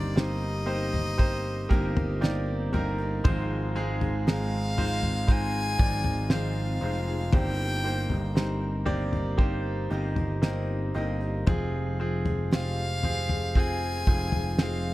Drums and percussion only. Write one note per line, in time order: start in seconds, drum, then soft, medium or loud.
0.18 snare loud
0.94 floor tom medium
1.19 kick medium
1.71 kick medium
1.97 floor tom medium
2.24 snare medium
2.74 floor tom medium
3.25 kick loud
3.25 floor tom loud
4.01 floor tom medium
4.28 snare loud
4.78 floor tom medium
5.03 floor tom medium
5.28 kick medium
5.79 kick loud
6.04 floor tom medium
6.30 snare loud
7.33 kick loud
7.33 floor tom loud
8.10 floor tom medium
8.37 snare loud
8.87 floor tom medium
9.13 floor tom medium
9.39 kick medium
10.16 floor tom medium
10.43 snare loud
11.47 kick loud
11.47 floor tom loud
12.26 floor tom medium
12.53 snare loud
13.03 floor tom medium
13.29 floor tom medium
13.55 kick medium
14.07 kick medium
14.32 floor tom medium
14.59 snare loud